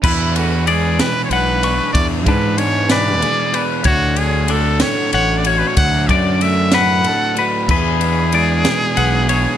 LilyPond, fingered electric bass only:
\new Staff \with { instrumentName = "Fingered electric bass" } { \clef bass \time 6/8 \key e \mixolydian \tempo 4. = 63 e,2 b,,4 | e,8 gis,2 r8 | d,2 a,,4 | d,8 fis,2 r8 |
e,2 b,,4 | }